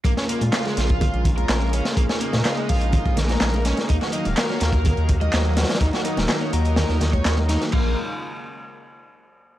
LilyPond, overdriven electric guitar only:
\new Staff \with { instrumentName = "Overdriven electric guitar" } { \time 4/4 \key bes \minor \tempo 4 = 125 bes16 des'16 bes16 r16 f'16 aes16 f'4 r16 bes'8. des'16 r16 | bes16 des'16 bes16 r16 f'16 aes16 f'4 r16 bes'8. des'16 r16 | ees'16 ges'16 ees'16 r16 bes'16 des'16 bes'4 r16 ees''8. ges'16 r16 | ees'16 ges'16 ees'16 r16 bes'16 des'16 bes'4 r16 des''16 des''16 r16 ees'16 r16 |
bes8 r2. r8 | }